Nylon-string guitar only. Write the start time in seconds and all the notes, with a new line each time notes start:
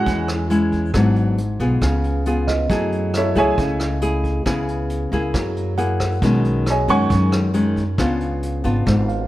Already playing: G#3 C#4 E4
0.06 E3
0.50 G#3 C#4 E4
0.94 G#2 F#3 B3 D4
1.60 B3 F4 G#4
1.82 C#3
2.26 B3 F4 G#4
2.70 F#3 A3 E4 G#4
3.35 A3 E4 G#4
3.58 C#3
4.02 A3 E4 G#4
4.46 C#3 B3 E4 G#4
5.13 A#3 E4 G#4
5.35 F#3
5.78 A#3 E4 G#4
6.22 B2 D#3 G#3 C#4
6.89 D#3 G#3 C#4
7.11 F#2
7.54 D#3 G#3 C#4
7.98 C#3 B3 D4 F4
8.64 B3 D4 F4
8.86 G#2